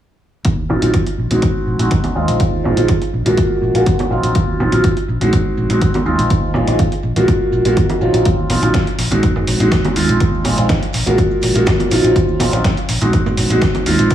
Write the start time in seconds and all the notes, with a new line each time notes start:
0.45 D#2, kick, closed hi-hat
0.58 maracas
0.69 A#1 F#3 C4 D#4 F4, high conga, maracas
0.82 A#1 F#3 C4 D#4 F4, closed hi-hat, maracas
0.94 D#2, kick, closed hi-hat, maracas
1.06 closed hi-hat, maracas
1.18 A#1, maracas
1.30 A#1 G#3 C4 D#4 F#4, closed hi-hat, high conga, maracas
1.42 D#2, kick, closed hi-hat, maracas
1.67 A#1, maracas
1.79 A#1 G#3 C4 D#4 F#4, closed hi-hat
1.91 D#2, kick, closed hi-hat
2.04 closed hi-hat, high conga, maracas
2.15 D#2 G#3 C4 D#4 F4, maracas
2.28 A#1, closed hi-hat, maracas
2.40 D#2, kick, closed hi-hat
2.53 maracas
2.64 A#1 G#3 C4 D#4 F4, high conga, maracas
2.76 A#1 G#3 C4 D#4 F4, closed hi-hat, maracas
2.88 D#2, kick, closed hi-hat, maracas
3.02 closed hi-hat, maracas
3.13 A#1, maracas
3.25 A#1 G#3 A#3 F4 F#4, closed hi-hat, high conga, maracas
3.37 D#2, kick, closed hi-hat, maracas
3.51 maracas
3.62 A#1, maracas
3.74 A#1 G#3 A#3 F4 F#4, closed hi-hat, maracas
3.86 D#2, kick, closed hi-hat
3.99 closed hi-hat, high conga, maracas
4.10 A#1 F#3 C4 D#4 F4, maracas
4.23 A#1, closed hi-hat, maracas
4.35 D#2, kick, closed hi-hat
4.49 maracas
4.59 A#1 F#3 C4 D#4 F4, high conga, maracas
4.72 A#1 F#3 C4 D#4 F4, closed hi-hat, maracas
4.84 D#2, kick, closed hi-hat, maracas
4.97 closed hi-hat, maracas
5.08 A#1, maracas
5.21 A#1 G#3 C4 D#4 F#4, closed hi-hat, high conga, maracas
5.33 D#2, kick, closed hi-hat
5.45 maracas
5.57 A#1, maracas
5.70 A#1 G#3 C4 D#4 F#4, closed hi-hat
5.81 D#2, kick, closed hi-hat
5.94 closed hi-hat, high conga, maracas
6.05 D#2 G#3 C4 D#4 F4, maracas
6.19 A#1, closed hi-hat, maracas
6.30 D#2, kick, closed hi-hat
6.43 maracas
6.54 A#1 G#3 C4 D#4 F4, high conga, maracas
6.67 A#1 G#3 C4 D#4 F4, closed hi-hat, maracas
6.79 D#2, kick, closed hi-hat, maracas
6.92 closed hi-hat, maracas
7.03 A#1, maracas
7.16 A#1 G#3 A#3 F4 F#4, closed hi-hat, high conga, maracas
7.28 D#2, kick, closed hi-hat, maracas
7.41 maracas
7.52 A#1, maracas
7.65 A#1 G#3 A#3 F4 F#4, closed hi-hat, maracas
7.77 D#2, kick, closed hi-hat
7.90 closed hi-hat, high conga, maracas
8.01 A#1 F#3 C4 D#4 F4, maracas
8.14 A#1, closed hi-hat, maracas
8.25 D#2, kick, closed hi-hat
8.39 maracas
8.49 A#1 F#3 C4 D#4 F4, open hi-hat, high conga, maracas
8.62 A#1 F#3 C4 D#4 F4, closed hi-hat, maracas
8.74 D#2, kick, snare, closed hi-hat
8.87 closed hi-hat, maracas
8.98 A#1, open hi-hat, maracas
9.11 A#1 G#3 C4 D#4 F#4, closed hi-hat, high conga, maracas
9.23 D#2, kick, closed hi-hat, maracas
9.36 low conga, maracas
9.47 A#1, open hi-hat, maracas
9.60 A#1 G#3 C4 D#4 F#4, closed hi-hat, maracas
9.72 D#2, kick, snare, closed hi-hat, maracas
9.85 closed hi-hat, high conga, maracas
9.96 D#2 G#3 C4 D#4 F4, open hi-hat, maracas
10.09 A#1, closed hi-hat, maracas
10.20 D#2, kick, closed hi-hat, maracas
10.34 maracas
10.44 A#1 G#3 C4 D#4 F4, open hi-hat, high conga, maracas
10.58 A#1 G#3 C4 D#4 F4, closed hi-hat, maracas
10.69 D#2, kick, snare, closed hi-hat, maracas
10.82 closed hi-hat, maracas
10.93 A#1, open hi-hat, maracas
11.06 A#1 G#3 A#3 F4 F#4, closed hi-hat, high conga, maracas
11.18 D#2, kick, closed hi-hat, maracas
11.31 maracas
11.42 A#1, open hi-hat, maracas
11.55 A#1 G#3 A#3 F4 F#4, closed hi-hat, maracas
11.66 D#2, kick, snare, closed hi-hat, maracas
11.80 closed hi-hat, high conga, maracas
11.91 A#1 F#3 C4 D#4 F4, open hi-hat, maracas
12.04 A#1, closed hi-hat, maracas
12.16 D#2, kick, closed hi-hat, maracas
12.28 maracas
12.39 A#1 F#3 C4 D#4 F4, open hi-hat, high conga, maracas
12.52 A#1 F#3 C4 D#4 F4, closed hi-hat, maracas
12.64 D#2, kick, snare, closed hi-hat, maracas
12.77 closed hi-hat, maracas
12.89 A#1, open hi-hat, maracas
13.01 A#1 G#3 C4 D#4 F#4, closed hi-hat, high conga, maracas
13.13 D#2, kick, closed hi-hat, maracas
13.26 low conga, maracas
13.37 A#1, open hi-hat, maracas
13.50 A#1 G#3 C4 D#4 F#4, closed hi-hat, maracas
13.62 D#2, kick, snare, closed hi-hat, maracas
13.75 closed hi-hat, high conga, maracas
13.86 D#2 G#3 C4 D#4 F4, open hi-hat, maracas
13.99 A#1, closed hi-hat, maracas
14.10 D#2, kick, closed hi-hat, maracas